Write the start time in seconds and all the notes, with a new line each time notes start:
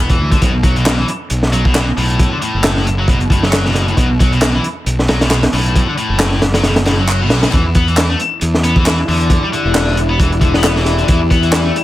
Already playing: E1
0.09 E3, kick, closed hi-hat
0.19 D2
0.32 D3, kick, closed hi-hat
0.42 B1 B2, kick, closed hi-hat
0.63 F#3, kick, closed hi-hat
0.76 B2, closed hi-hat
0.86 B2, snare, clap, closed hi-hat
0.98 E3
1.08 closed hi-hat
1.30 B1, closed hi-hat
1.43 snare
1.53 F#3, closed hi-hat
1.65 B2, kick
1.75 B2, snare, clap, closed hi-hat
1.97 B1 A2, open hi-hat
2.10 closed hi-hat
2.19 kick, closed hi-hat
2.32 D3
2.42 A2, closed hi-hat
2.54 F#1
2.64 snare, clap, closed hi-hat
2.77 snare
2.87 closed hi-hat
2.99 F#3
3.08 B2, kick, closed hi-hat
3.20 closed hi-hat
3.30 A2, kick, closed hi-hat
3.43 F#3, snare
3.53 snare, clap, closed hi-hat
3.66 B2, snare
3.75 snare, closed hi-hat
3.88 A2, closed hi-hat
3.97 B1 B2, kick, closed hi-hat
4.20 F#3, kick, closed hi-hat
4.32 B2, closed hi-hat
4.41 B2, snare, clap, closed hi-hat
4.55 E3
4.64 closed hi-hat
4.86 B1, closed hi-hat
4.99 snare
5.08 F#3, snare, closed hi-hat
5.21 B2, snare, closed hi-hat
5.31 B2, snare, clap, closed hi-hat
5.43 snare, closed hi-hat
5.53 B1 A2, open hi-hat
5.66 closed hi-hat
5.76 kick, closed hi-hat
5.88 D3
5.98 A2, closed hi-hat
6.09 F#1
6.20 snare, clap, closed hi-hat
6.32 snare
6.42 snare, closed hi-hat
6.54 F#3, snare, closed hi-hat
6.63 B2, snare, closed hi-hat, reverse cymbal
6.76 snare, closed hi-hat
6.86 A2, snare, closed hi-hat
6.99 F#3
7.09 clap, closed hi-hat
7.21 B2
7.30 B1, snare, closed hi-hat
7.43 A2, snare, closed hi-hat
7.53 E2 E3 E4 G4 D5, kick, closed hi-hat
7.75 B3, kick, closed hi-hat
7.87 E3, closed hi-hat
7.97 E3, snare, clap, closed hi-hat
8.10 A3
8.20 closed hi-hat
8.41 E2, closed hi-hat
8.54 snare
8.64 B3, closed hi-hat
8.76 E3, kick
8.86 E3, snare, clap, closed hi-hat
9.08 E2 D3, open hi-hat
9.21 closed hi-hat
9.30 kick, closed hi-hat
9.43 G3
9.53 D3, closed hi-hat
9.65 E1
9.75 snare, clap, closed hi-hat
9.87 snare
9.97 closed hi-hat
10.10 B3
10.19 E3, kick, closed hi-hat
10.32 closed hi-hat
10.41 D3, kick, closed hi-hat
10.54 B3, snare
10.64 snare, clap, closed hi-hat
10.76 E3, snare
10.85 snare, closed hi-hat
10.98 D3, closed hi-hat
11.08 E2 E3, kick, closed hi-hat
11.31 B3, kick, closed hi-hat
11.43 E3, closed hi-hat
11.52 E3, snare, clap, closed hi-hat
11.65 A3
11.76 closed hi-hat